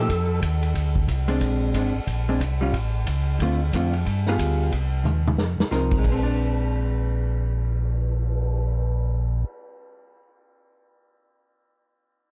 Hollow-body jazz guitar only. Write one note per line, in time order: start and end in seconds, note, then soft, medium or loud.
1.28 1.72 G#3 medium
1.28 1.72 C4 medium
1.28 1.72 D4 medium
1.75 1.93 G#3 medium
1.75 1.94 C4 medium
1.75 1.94 D4 medium
2.29 2.40 G#3 medium
2.29 2.40 C4 medium
2.29 2.40 D4 medium
2.61 2.72 G3 medium
2.61 2.73 C#4 medium
2.61 2.73 F4 medium
3.42 3.59 D3 medium
3.42 3.59 A3 medium
3.42 3.60 C4 medium
3.42 3.60 F4 medium
3.75 3.92 D3 soft
3.75 3.92 A3 soft
3.75 3.92 C4 soft
3.75 3.93 F4 medium
4.28 4.70 G3 medium
4.28 4.71 B3 medium
4.28 4.71 F4 medium
4.28 4.71 G#4 medium
5.71 5.98 F3 medium
5.71 6.05 C4 medium
5.71 6.05 D#4 medium
5.71 6.05 A#4 medium
5.98 10.15 G#3 medium
6.12 10.22 C4 medium
6.23 10.28 D4 medium